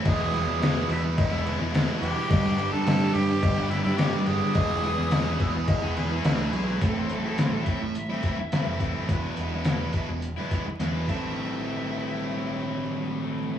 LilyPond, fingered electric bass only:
\new Staff \with { instrumentName = "Fingered electric bass" } { \clef bass \time 4/4 \key a \minor \tempo 4 = 106 e,,8. e,8. e,8 e,,8. e,8 r16 e,,16 r16 | g,,8. g,8. g,8 g,,8. g,8 r16 g,,16 r16 | e,,8. e,8. e,8 e,,8 e,8 d,8 b,,8 | a,,8 a,,8. a,,16 r16 a,,8 r4 f,,8 r16 |
e,,16 r16 e,,8. e,16 r16 e,,8 r8. e,8 a,,8~ | a,,1 | }